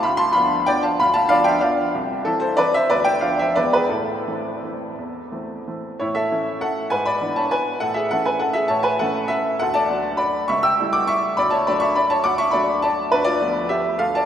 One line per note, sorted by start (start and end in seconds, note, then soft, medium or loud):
0.03 0.34 D2 medium
0.03 0.18 F5 medium
0.03 0.19 B5 loud
0.17 0.33 A5 medium
0.17 0.34 C6 loud
0.33 0.64 F3 medium
0.33 0.64 B3 medium
0.33 0.64 D4 medium
0.33 0.65 F5 medium
0.33 0.66 B5 loud
0.66 0.97 F3 medium
0.66 0.96 B3 medium
0.66 0.97 D4 medium
0.66 0.83 D5 loud
0.66 0.83 G5 loud
0.83 0.98 F5 medium
0.83 0.99 A5 loud
1.00 1.30 D2 medium
1.00 1.14 F5 medium
1.00 1.15 B5 loud
1.14 1.27 F5 medium
1.14 1.30 A5 loud
1.29 1.60 F3 medium
1.29 1.60 B3 medium
1.29 1.60 D4 medium
1.29 1.45 D5 medium
1.29 1.45 F5 loud
1.44 1.61 E5 medium
1.44 1.62 G5 loud
1.61 1.91 F3 medium
1.61 1.91 B3 medium
1.61 1.91 D4 medium
1.61 1.91 D5 medium
1.61 1.93 F5 loud
1.94 2.25 C2 medium
2.25 2.55 E3 medium
2.25 2.56 C4 medium
2.25 2.41 E4 medium
2.25 2.40 A4 loud
2.40 2.57 A4 medium
2.40 2.57 C5 loud
2.57 2.86 E3 medium
2.57 2.87 C4 medium
2.57 2.87 E4 medium
2.57 2.73 B4 medium
2.57 2.73 D5 loud
2.74 2.89 C5 medium
2.74 2.90 E5 loud
2.90 3.21 D2 medium
2.90 3.04 B4 medium
2.90 3.05 D5 loud
3.04 3.20 E5 medium
3.04 3.21 G5 loud
3.21 3.53 F3 medium
3.21 3.53 B3 soft
3.21 3.53 D4 medium
3.21 3.38 D5 medium
3.21 3.38 F5 medium
3.39 3.55 C5 medium
3.39 3.56 E5 loud
3.56 3.90 E2 medium
3.56 3.88 E3 soft
3.56 3.88 G#3 soft
3.56 3.88 B3 soft
3.56 3.72 B4 medium
3.56 3.73 D5 loud
3.73 3.90 G#4 medium
3.73 3.90 B4 medium
3.89 4.25 A2 medium
3.89 5.80 E4 medium
3.89 5.83 A4 medium
4.27 4.59 E3 soft
4.27 4.59 A3 soft
4.27 4.59 C4 medium
4.64 4.94 E3 soft
4.64 4.94 A3 soft
4.64 4.95 C4 soft
4.98 5.31 E2 medium
5.32 5.63 E3 soft
5.32 5.63 A3 soft
5.32 5.63 C4 soft
5.68 5.97 E3 soft
5.68 5.97 A3 soft
5.68 5.97 C4 soft
6.00 6.29 A2 medium
6.00 6.14 E4 medium
6.00 6.14 C#5 medium
6.15 6.58 A4 medium
6.15 6.61 E5 loud
6.32 6.88 E3 soft
6.32 6.88 A3 soft
6.32 6.88 C#4 medium
6.61 6.89 A4 medium
6.61 6.91 F#5 loud
6.90 7.20 G#2 medium
6.90 7.05 B4 medium
6.90 7.05 G#5 loud
7.05 7.34 D5 medium
7.05 7.36 B5 loud
7.21 7.77 E3 soft
7.21 7.78 B3 medium
7.21 7.78 D4 medium
7.36 7.51 C#5 medium
7.36 7.51 A5 medium
7.51 7.79 B4 medium
7.51 7.81 G#5 loud
7.80 8.10 A2 medium
7.80 7.95 A4 medium
7.80 7.95 F#5 loud
7.94 8.09 G#4 medium
7.94 8.10 E5 medium
8.11 8.67 E3 medium
8.11 8.68 A3 medium
8.11 8.68 C#4 medium
8.11 8.25 A4 medium
8.11 8.25 F#5 loud
8.25 8.40 B4 medium
8.25 8.41 G#5 medium
8.39 8.55 A4 medium
8.39 8.55 F#5 loud
8.53 8.69 G#4 medium
8.53 8.69 E5 loud
8.68 8.99 A2 medium
8.68 8.84 C#5 medium
8.68 8.84 A5 loud
8.83 8.98 B4 medium
8.83 8.99 G#5 loud
8.99 9.57 E3 medium
8.99 9.58 A3 medium
8.99 9.58 C#4 medium
8.99 9.28 A4 medium
8.99 9.30 F#5 loud
9.28 9.58 A4 medium
9.28 9.60 E5 loud
9.59 9.90 D2 medium
9.59 9.75 A4 medium
9.59 9.75 F#5 loud
9.74 10.16 D5 medium
9.74 10.19 A5 loud
9.89 10.45 F#3 medium
9.89 10.45 A3 medium
9.89 10.45 D4 medium
10.17 10.46 D5 medium
10.17 10.48 B5 loud
10.48 10.77 C#2 medium
10.48 10.63 E5 medium
10.48 10.63 C#6 loud
10.63 10.92 G5 medium
10.63 10.93 E6 loud
10.80 11.34 G3 medium
10.80 11.34 A3 medium
10.80 11.34 E4 medium
10.93 11.08 F#5 medium
10.93 11.08 D6 loud
11.07 11.35 E5 medium
11.07 11.37 C#6 loud
11.37 11.66 D2 medium
11.37 11.51 D5 medium
11.37 11.51 B5 loud
11.50 11.65 C#5 medium
11.50 11.65 A5 loud
11.67 12.22 F#3 medium
11.67 12.22 A3 medium
11.67 12.22 D4 medium
11.67 11.81 D5 medium
11.67 11.81 B5 loud
11.80 11.95 E5 medium
11.80 11.95 C#6 loud
11.95 12.10 D5 medium
11.95 12.10 B5 loud
12.10 12.24 C#5 medium
12.10 12.24 A5 loud
12.24 12.52 D2 medium
12.24 12.38 F#5 medium
12.24 12.38 D6 loud
12.38 12.52 E5 medium
12.38 12.53 C#6 loud
12.51 13.09 F#3 medium
12.51 13.09 A3 medium
12.51 13.09 D4 medium
12.51 12.81 D5 medium
12.51 12.82 B5 loud
12.82 13.11 D5 medium
12.82 13.12 A5 loud
13.12 13.41 D2 medium
13.12 13.26 D4 medium
13.12 13.26 B4 loud
13.24 13.68 F4 medium
13.24 13.70 D5 loud
13.41 13.97 F3 medium
13.41 13.97 A3 medium
13.41 13.97 B3 medium
13.69 13.98 G4 medium
13.69 14.00 E5 loud
13.99 14.25 D2 medium
13.99 14.14 A4 medium
13.99 14.14 F5 loud
14.15 14.25 D5 medium
14.15 14.25 A5 loud